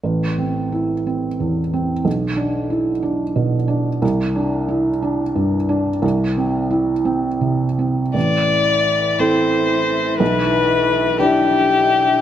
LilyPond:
<<
  \new Staff \with { instrumentName = "Violin" } { \time 6/8 \key a \minor \tempo 4. = 59 r2. | r2. | r2. | r2. |
d''4. c''4. | b'4. g'4. | }
  \new Staff \with { instrumentName = "Ambient pad" } { \time 6/8 \key a \minor << { r2. | r2. | r2. | r2. |
e''2.~ | e''2. | } \\ { r2. | r2. | r2. | r2. |
<e' a'>2. | <d' g'>2. | } >> }
  \new Staff \with { instrumentName = "Felt piano" } { \time 6/8 \key a \minor a,,8 c'8 e'8 c'8 e,8 c'8 | b,,8 d'8 e'8 d'8 b,8 d'8 | c,8 d'8 e'8 d'8 g,8 d'8 | c,8 c'8 e'8 c'8 c8 c'8 |
a,,4. <c' e' a'>4. | b,,4. <d' e' g'>4. | }
  \new Staff \with { instrumentName = "Cello" } { \clef bass \time 6/8 \key a \minor r2. | r2. | r2. | r2. |
e2.~ | e2. | }
>>